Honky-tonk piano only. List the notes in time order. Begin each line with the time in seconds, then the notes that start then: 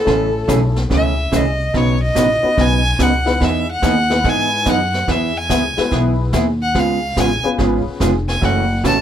0.05 A3 C#4 E4 A4
0.48 A3 C#4 E4 G#4 A4
2.42 B3 C#4 D#4 F#4 B4
3.25 B3 D#4 E4 G#4 B4
4.10 B3 D#4 E4 G#4 B4
5.77 G#3 B3 E4 G#4 B4
7.43 B3 C#4 F4 G#4 B4